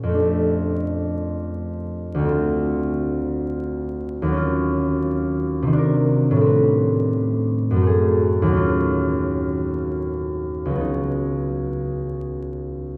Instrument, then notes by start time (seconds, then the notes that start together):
harp
Already playing: A#2 F3 C#4 G#4
0.03 F2
0.09 A3
0.14 D4
0.20 G4
2.15 D2
2.19 A3
2.25 C4
2.30 F4
4.22 D#2
4.26 F#3
4.32 C#4
4.37 F4
5.62 C3
5.67 D#3
5.73 D4
5.78 A#4
6.31 A2
6.36 G3
6.41 C4
6.46 B4
7.71 F#2
7.76 F#3
7.81 A3
7.87 G#4
8.42 D#2
8.47 F#3
8.52 C#4
8.57 F4
10.65 C#2
10.70 F#3
10.75 B3
10.81 D#4